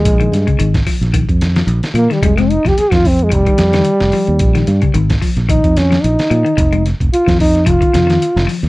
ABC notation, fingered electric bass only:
X:1
M:4/4
L:1/16
Q:"Swing 16ths" 1/4=110
K:Fm
V:1 name="Fingered electric bass" clef=bass
B,,,2 G,, z A,,,2 z B,,,2 F,,3 B,,, z B,, z | F,,,3 F,,, z F,,3 F,,, z F,,2 z F,,, z E,, | B,,,2 G,, z A,,,2 z B,,,2 F,,3 B,,, z B,, z | F,,,3 F,,, z F,,3 F,,, z F,,2 z F,,, z E,, |]